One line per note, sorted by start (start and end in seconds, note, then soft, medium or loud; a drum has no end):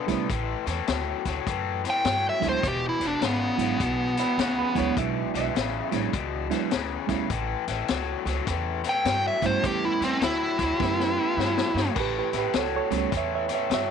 0.07 0.22 C3 medium
0.07 0.28 D3 medium
0.07 0.27 G3 medium
0.07 0.27 A3 medium
0.07 0.27 B3 medium
0.07 0.28 B3 medium
0.07 0.27 C#4 medium
0.07 0.27 E4 medium
0.07 kick medium
0.07 snare soft
0.07 closed hi-hat medium
0.30 0.53 A1 medium
0.30 0.63 A2 medium
0.30 0.64 E3 medium
0.30 kick loud
0.30 closed hi-hat medium
0.66 0.80 E2 medium
0.66 0.85 A2 medium
0.66 0.86 E3 medium
0.66 snare soft
0.66 closed hi-hat medium
0.87 1.11 D2 medium
0.87 1.21 A2 medium
0.87 1.22 F#3 medium
0.87 snare loud
0.87 closed hi-hat medium
1.25 1.39 D2 medium
1.25 1.45 A2 medium
1.25 1.45 F#3 medium
1.25 kick medium
1.25 snare soft
1.25 closed hi-hat medium
1.47 1.83 F#2 medium
1.47 1.80 A2 medium
1.47 1.81 E3 medium
1.47 kick medium
1.47 closed hi-hat medium
1.84 2.03 A2 medium
1.84 2.03 E3 medium
1.84 snare soft
1.84 closed hi-hat medium
1.90 2.25 G5 medium
2.05 2.28 G2 medium
2.05 2.39 A2 medium
2.05 2.39 F#3 medium
2.05 snare loud
2.05 closed hi-hat medium
2.29 2.46 E5 medium
2.40 2.56 D2 medium
2.40 2.62 A2 medium
2.40 2.60 F#3 medium
2.40 2.60 G#3 medium
2.40 2.61 B3 medium
2.40 2.61 D4 medium
2.40 2.61 E4 medium
2.40 kick medium
2.40 snare soft
2.40 closed hi-hat medium
2.44 2.62 F#3 medium
2.49 2.65 C5 medium
2.63 2.87 E1 medium
2.63 2.98 E2 medium
2.63 2.98 B2 medium
2.63 kick medium
2.63 closed hi-hat medium
2.68 2.85 G4 medium
2.89 3.05 E4 medium
3.00 3.13 E1 medium
3.00 3.20 E2 medium
3.00 3.20 B2 medium
3.00 snare soft
3.00 closed hi-hat medium
3.07 3.24 D4 medium
3.21 3.45 G#1 medium
3.21 3.56 E2 medium
3.21 3.56 C#3 medium
3.21 snare loud
3.21 closed hi-hat medium
3.26 4.95 B3 medium
3.57 3.72 G#1 medium
3.57 3.79 E2 medium
3.57 3.79 C#3 medium
3.57 3.77 F#3 medium
3.57 3.77 G#3 medium
3.57 3.77 B3 medium
3.57 3.78 D4 medium
3.57 3.78 E4 medium
3.57 snare soft
3.57 closed hi-hat medium
3.80 4.17 B1 medium
3.80 4.14 E2 medium
3.80 4.14 B2 medium
3.80 kick medium
3.80 closed hi-hat medium
4.17 4.36 E2 medium
4.17 4.37 B2 medium
4.17 4.39 E4 medium
4.17 snare soft
4.17 closed hi-hat medium
4.38 4.61 D2 medium
4.38 4.72 E2 medium
4.38 4.72 C#3 medium
4.38 4.58 F#4 medium
4.38 snare loud
4.38 closed hi-hat medium
4.59 4.77 B4 medium
4.74 4.89 D2 medium
4.74 4.95 E2 medium
4.74 4.95 C#3 medium
4.74 5.50 F#3 medium
4.74 5.50 G#3 medium
4.74 5.51 B3 medium
4.74 5.51 D4 medium
4.74 5.51 E4 medium
4.74 4.97 C#5 medium
4.74 kick medium
4.74 snare soft
4.74 closed hi-hat medium
4.96 5.20 B1 medium
4.96 5.30 E2 medium
4.96 5.30 B2 medium
4.96 5.36 E5 medium
4.96 kick loud
4.96 closed hi-hat medium
5.34 5.47 B1 medium
5.34 5.53 E2 medium
5.34 5.53 B2 medium
5.34 5.93 E5 medium
5.34 snare soft
5.34 closed hi-hat medium
5.55 5.79 A1 medium
5.55 5.89 E2 medium
5.55 5.89 C#3 medium
5.55 snare loud
5.55 closed hi-hat medium
5.91 6.06 A1 medium
5.91 6.11 E2 medium
5.91 6.11 C#3 medium
5.91 6.11 F#3 medium
5.91 6.11 G#3 medium
5.91 6.11 B3 medium
5.91 6.12 D4 medium
5.91 6.12 E4 medium
5.91 snare soft
5.91 closed hi-hat medium
6.12 6.50 C#2 medium
6.12 6.46 E2 medium
6.12 6.47 B2 medium
6.12 kick loud
6.12 closed hi-hat medium
6.50 6.70 E2 medium
6.50 6.70 B2 medium
6.50 6.69 F#3 medium
6.50 6.70 G#3 medium
6.50 6.70 B3 medium
6.50 6.70 D4 medium
6.50 6.70 E4 medium
6.50 snare soft
6.50 closed hi-hat medium
6.71 6.95 D2 medium
6.71 7.05 E2 medium
6.71 7.06 C#3 medium
6.71 snare loud
6.71 closed hi-hat medium
7.07 7.22 D2 medium
7.07 7.28 E2 medium
7.07 7.29 C#3 medium
7.07 7.27 G3 medium
7.07 7.28 A3 medium
7.07 7.28 B3 medium
7.07 7.28 C#4 medium
7.07 7.28 E4 medium
7.07 kick medium
7.07 snare soft
7.07 closed hi-hat soft
7.30 7.53 A1 medium
7.30 7.64 A2 medium
7.30 7.64 E3 medium
7.30 kick loud
7.30 closed hi-hat medium
7.68 7.81 A1 medium
7.68 7.87 A2 medium
7.68 7.87 E3 medium
7.68 snare soft
7.68 closed hi-hat medium
7.88 8.12 C#2 medium
7.88 8.22 A2 medium
7.88 8.22 F#3 medium
7.88 snare loud
7.88 closed hi-hat medium
8.25 8.39 C#2 medium
8.25 8.45 A2 medium
8.25 8.45 F#3 medium
8.25 snare soft
8.25 closed hi-hat medium
8.47 8.84 E2 medium
8.47 8.80 A2 medium
8.47 8.81 E3 medium
8.47 kick loud
8.47 snare soft
8.47 closed hi-hat medium
8.84 9.03 A2 medium
8.84 9.03 E3 medium
8.84 snare soft
8.84 closed hi-hat medium
8.89 9.25 G5 medium
9.05 9.28 G2 medium
9.05 9.39 A2 medium
9.05 9.39 F#3 medium
9.05 snare loud
9.05 closed hi-hat medium
9.28 9.45 E5 medium
9.42 9.56 G2 medium
9.42 9.61 A2 medium
9.42 9.61 F#3 medium
9.42 10.17 G3 medium
9.42 10.17 A3 medium
9.42 10.18 B3 medium
9.42 10.18 C#4 medium
9.42 10.18 E4 medium
9.42 9.64 C5 medium
9.42 kick medium
9.42 snare soft
9.42 closed hi-hat medium
9.63 9.87 E2 medium
9.63 9.97 A2 medium
9.63 9.97 E3 medium
9.63 9.84 G4 medium
9.63 kick loud
9.63 closed hi-hat medium
9.85 10.03 E4 medium
10.00 10.14 E2 medium
10.00 10.19 A2 medium
10.00 10.20 E3 medium
10.00 10.22 C4 medium
10.00 snare soft
10.00 closed hi-hat medium
10.21 10.45 D2 medium
10.21 10.55 A2 medium
10.21 10.55 F#3 medium
10.21 11.93 E4 medium
10.21 snare loud
10.21 closed hi-hat medium
10.58 10.72 D2 medium
10.58 10.77 A2 medium
10.58 10.78 F#3 medium
10.58 kick medium
10.58 snare soft
10.58 closed hi-hat medium
10.79 11.16 F#2 medium
10.79 11.13 A2 medium
10.79 11.13 E3 medium
10.79 11.67 A3 medium
10.79 11.67 B3 medium
10.79 11.68 C#4 medium
10.79 11.68 E4 medium
10.79 11.67 G4 medium
10.79 kick loud
10.79 snare medium
11.00 snare medium
11.17 11.36 A2 medium
11.17 11.36 E3 medium
11.37 11.60 G2 medium
11.37 11.71 A2 medium
11.37 11.71 F#3 medium
11.37 snare medium
11.58 snare medium
11.74 11.88 G2 medium
11.74 11.94 A2 medium
11.74 11.94 F#3 medium
11.74 snare medium
11.95 12.19 A1 medium
11.95 12.29 A2 medium
11.95 12.29 E3 medium
11.95 11.99 A#4 medium
11.95 kick loud
11.95 crash medium
12.00 12.16 G4 medium
12.00 12.17 B4 medium
12.18 12.35 G4 medium
12.18 12.36 B4 medium
12.33 12.46 A1 medium
12.33 12.52 A2 medium
12.33 12.52 E3 medium
12.33 snare soft
12.33 closed hi-hat medium
12.38 12.54 G4 medium
12.38 12.55 B4 medium
12.53 12.77 C#2 medium
12.53 12.87 A2 medium
12.53 12.88 F#3 medium
12.53 12.73 A4 medium
12.53 snare loud
12.53 closed hi-hat medium
12.58 12.75 C#5 medium
12.76 12.93 A4 medium
12.76 12.94 C#5 medium
12.90 13.04 C#2 medium
12.90 13.10 A2 medium
12.90 13.10 F#3 medium
12.90 13.09 G3 medium
12.90 13.10 A3 medium
12.90 13.10 B3 medium
12.90 13.10 C#4 medium
12.90 snare soft
12.90 closed hi-hat medium
12.97 13.13 A4 medium
12.97 13.14 C#5 medium
13.12 13.48 E2 medium
13.12 13.45 A2 medium
13.12 13.45 E3 medium
13.12 kick loud
13.12 snare soft
13.12 closed hi-hat medium
13.17 13.32 C#5 medium
13.17 13.33 E5 medium
13.35 13.51 C#5 medium
13.35 13.52 E5 medium
13.48 13.67 A2 medium
13.48 13.68 E3 medium
13.48 snare soft
13.48 closed hi-hat medium
13.54 13.70 C#5 medium
13.54 13.71 E5 medium
13.69 13.91 G2 medium
13.69 13.91 A2 medium
13.69 13.91 F#3 medium
13.69 snare loud
13.69 closed hi-hat medium
13.73 13.91 C#5 medium
13.73 13.91 E5 medium